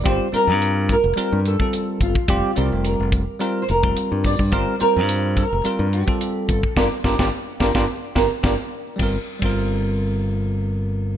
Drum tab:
RD |----------------|----------------|----------------|----------------|
HH |x-x-x-x-x-x-x-x-|x-x-x-x-x-x-x-o-|x-x-x-x-x-x-x-x-|----------------|
SD |----------------|----------------|----------------|o-oo--oo--o-o---|
BD |o-----o----o--oo|o-----o----o--oo|o-----o----o--oo|o-oo--oo--o-o---|

RD |x--x------------|
HH |----------------|
SD |----------------|
BD |o--o------------|